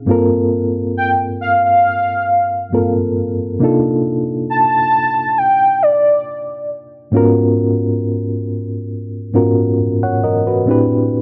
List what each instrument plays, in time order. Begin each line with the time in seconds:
0.06 reed electric piano G2 A#3 C4 F4 A4
0.11 reed electric piano A#4
0.97 soft synth lead G5
1.41 soft synth lead F5
1.65 soft synth lead F5
2.72 reed electric piano G2 A#3 C4 F4 A4 A#4
3.60 reed electric piano C3 A#3 D4 D#4
3.64 reed electric piano F4 A4
4.50 soft synth lead A5
5.38 soft synth lead G5
5.82 soft synth lead D5
7.12 reed electric piano G#2 A#3 C#4 F4 F#4
7.17 reed electric piano B3 A#4
9.34 reed electric piano G#2 B3 C#4 F4 F#4 A#4
10.03 reed electric piano C#5 F#5
10.24 reed electric piano A#4 D#5
10.47 reed electric piano F#4 B4
10.66 reed electric piano A2 C4 D4 E4
10.70 reed electric piano G4 B4